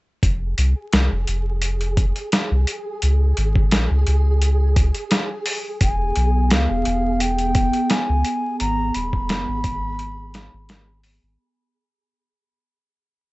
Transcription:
0.23 F1 G#4, kick, closed hi-hat
0.58 C2, closed hi-hat
0.93 C2, snare, closed hi-hat
1.12 F1
1.27 F1, closed hi-hat
1.62 closed hi-hat
1.81 closed hi-hat
1.97 kick, closed hi-hat
2.16 closed hi-hat
2.32 snare, closed hi-hat
2.51 C2
2.67 closed hi-hat
3.02 C#2, closed hi-hat
3.37 G#1, closed hi-hat
3.56 kick
3.71 A#1, snare, closed hi-hat
3.91 C#2
4.07 C#2, closed hi-hat
4.42 closed hi-hat
4.76 kick, closed hi-hat
4.94 closed hi-hat
5.11 snare, closed hi-hat
5.46 open hi-hat
5.81 E1 B3 G#5, kick, closed hi-hat
6.16 B1, closed hi-hat
6.50 C#2 F5, snare, closed hi-hat
6.70 E1
6.85 E1, closed hi-hat
7.20 G5, closed hi-hat
7.38 closed hi-hat
7.55 kick, closed hi-hat
7.73 closed hi-hat
7.90 G#5, snare, closed hi-hat
8.09 C#2
8.25 closed hi-hat
8.60 G#1 A#5, closed hi-hat
8.94 D#1 B5, closed hi-hat
9.13 kick
9.29 F#1, snare, closed hi-hat
9.48 G#1
9.64 G#1, kick, closed hi-hat
9.99 closed hi-hat
10.34 snare, closed hi-hat
10.54 G#1
10.69 snare, closed hi-hat
11.04 open hi-hat
11.23 G#1

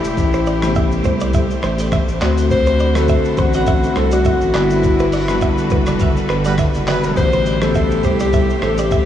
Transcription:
Already playing: A3 E4 G4 C5
0.04 E1, shaker
0.17 A1, kick, shaker
0.33 C5, shaker
0.46 D5, shaker
0.62 C3 A3 B3 G4, cross-stick, shaker
0.75 E5, kick, shaker
0.92 shaker
1.04 C2 C5, kick, shaker
1.20 D5, shaker
1.33 E5, kick, shaker
1.50 shaker
1.63 A1 C5, cross-stick, shaker
1.79 D5, shaker
1.92 E5, kick, cross-stick, shaker
2.08 A1, shaker
2.21 D2 D3 A3 C4 E4 F#4 D5, cross-stick, clap, shaker
2.38 C5, shaker
2.50 C5, kick, shaker
2.66 C5, shaker
2.79 D5, shaker
2.95 D3 A3 C4 F#4 A4, cross-stick, shaker
3.08 E5, kick, shaker
3.25 shaker
3.37 A1 F#4 C5, kick, shaker
3.53 F#4 D5, shaker
3.67 E5, kick, shaker
3.83 shaker
3.96 C2 A4 C5, cross-stick, shaker
4.11 F#4 D5, shaker
4.25 E5, kick, shaker
4.41 A1, shaker
4.54 G1 D3 G3 B3 D4 E4 F#4 A4 B4 D5, cross-stick, clap, shaker
4.70 shaker
4.83 kick, shaker
4.99 B4, shaker
5.12 D5, open hi-hat, shaker
5.28 D3 G3 B3 F#4, cross-stick, shaker
5.41 E5, kick, shaker
5.58 shaker
5.70 F#1 B4, kick, shaker
5.86 D5, cross-stick, shaker
5.99 E5, kick, shaker
6.16 shaker
6.29 G1 B4, cross-stick, shaker
6.44 G3 B3 F#4 B4 D5, shaker
6.58 E5, kick, cross-stick, shaker
6.74 F#1, shaker
6.87 D3 G3 B3 E4 F#4 B4 D5, cross-stick, clap, shaker
7.03 E1 B4, shaker
7.16 A1 B2 C3 A3 G4 C5, kick, shaker
7.32 C5, shaker
7.46 D5, shaker
7.61 C3 A3 B3 G4 A4, cross-stick, shaker
7.75 E5, kick, shaker
7.91 shaker
8.03 C2 G4 C5, kick, shaker
8.20 G4 D5, shaker
8.33 E5, kick, shaker
8.50 shaker
8.62 A1 A4 C5, cross-stick, shaker
8.78 G4 D5, shaker
8.91 E5, kick, shaker

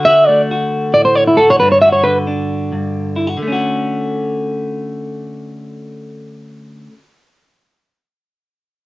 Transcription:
Already playing: D3
0.05 F#4 E5
0.27 A3 D5
0.51 F#4
0.94 A2 D5
1.05 C5
1.16 C#5
1.28 E4
1.37 F#4 A4
1.50 C#5
1.60 G2 D4 B4
1.72 C#5
1.82 F#4 E5
1.92 C#5
2.04 D3 B4
2.27 D4
2.72 G2
3.16 E4
3.27 F#4
3.37 D3
3.43 A3
3.48 C#4
3.52 F#4

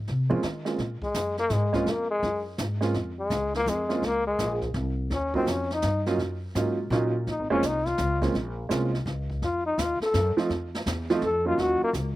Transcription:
0.08 C3, snare
0.29 F3 G#3 A#3 C4 C#4 F4
0.43 D#3, snare
0.65 G#3 A#3 C4 C#4 F4, snare
0.78 A#2, brush sweep, kick, snare
1.02 G#3, muted upright bass stroke, kick
1.14 F#2, kick, snare, hi-hat pedal
1.37 A#3, snare
1.50 G#2 G#3, kick, snare, hi-hat pedal
1.73 G#3 A#3 C4 C#4 F4, kick, snare
1.86 F2, brush sweep, snare
1.90 A#3
2.11 G#3
2.22 F#2, kick, snare
2.58 G#2, kick, snare, hi-hat pedal
2.81 G#3 A#3 C4 C#4 F4, snare
2.94 F2, brush sweep, kick, snare
3.19 G#3
3.30 C#2, kick, snare, hi-hat pedal
3.54 A#3, snare
3.66 F2 G#3, kick, snare, hi-hat pedal
3.89 G#3 A#3 C4 C#4 F4, snare
4.02 C#2 A#3, brush sweep, kick, snare
4.27 G#3
4.38 A#1, kick, snare, hi-hat pedal
4.62 kick, snare
4.74 C2, kick, snare
5.10 D#2 C#4, brush sweep, kick, snare
5.34 F#3 A#3 C4 C#4 D#4 F4, kick
5.46 F2, kick, snare, hi-hat pedal
5.51 C#4
5.71 D#4, snare
5.82 G2, kick, snare, hi-hat pedal
6.06 F#3 A#3 C#4 D#4 F4, snare
6.18 F#2, brush sweep, kick, snare
6.55 G#2 F#3 A#3 C#4 D#4 F4, kick, snare, hi-hat pedal
6.90 A#2 F#3 A#3 C#4 D#4 F4, kick, snare
7.27 A#1 D#4, brush sweep, kick, snare
7.39 G#1
7.50 F1 G#3 A#3 C4 C#4 F4
7.63 C2 D#4, kick, snare, hi-hat pedal
7.86 F4, kick, snare
7.98 C#2, snare, hi-hat pedal
8.22 G#3 A#3 C4 C#4 F4, kick, snare
8.34 A#1, brush sweep, kick, snare
8.69 C2 G#3 A#3 C4 C#4 F4, kick, snare, hi-hat pedal
8.95 snare
9.06 C#2, kick, snare
9.30 kick
9.42 F2 F4, brush sweep, kick, snare
9.66 D#4
9.78 D#2 F4, kick, snare, hi-hat pedal
10.00 A4, muted upright bass stroke, snare
10.14 F#2, kick, snare, hi-hat pedal
10.37 F3 A3 C4 D#4 F4, muted upright bass stroke, snare
10.50 F2, brush sweep, kick, snare
10.75 snare
10.86 E2, kick, snare, hi-hat pedal
11.10 F3 A3 C4 D#4 F4, snare
11.22 F2 A4, kick, snare
11.45 F#3 A#3 C#4 D#4 F4
11.58 D#2 F#4, brush sweep, kick, snare
11.82 A#3, muted upright bass stroke
11.93 C#2, kick, snare, hi-hat pedal

